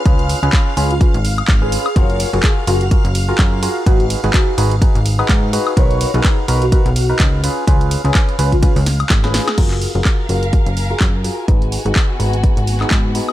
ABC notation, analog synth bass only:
X:1
M:4/4
L:1/16
Q:"Swing 16ths" 1/4=126
K:F#
V:1 name="Analog synth bass" clef=bass
C,,2 z C,, z2 C,,2 z G,,,2 z G,,,2 z2 | F,,,2 z F,,, z2 F,,,2 z F,,,2 z F,,2 z2 | G,,,2 z G,,, z2 G,,,2 z G,,,2 z G,,2 z2 | B,,,2 z B,,, z2 B,,,2 z B,,,2 z C,,2 z2 |
C,,2 z C,, z2 C,,2 z C,,2 z G,,,2 z2 | F,,,2 z F,,, z2 F,,,2 z F,,,2 z F,,2 z2 | G,,,2 z G,,, z2 G,,,2 z G,,,2 z G,,2 z2 |]